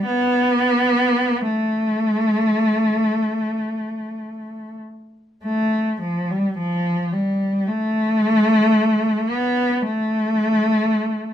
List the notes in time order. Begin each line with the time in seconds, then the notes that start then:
0.06 B3
1.41 A3
5.44 A3
6.01 F3
6.30 G3
6.58 F3
7.12 G3
7.67 A3
9.29 B3
9.82 A3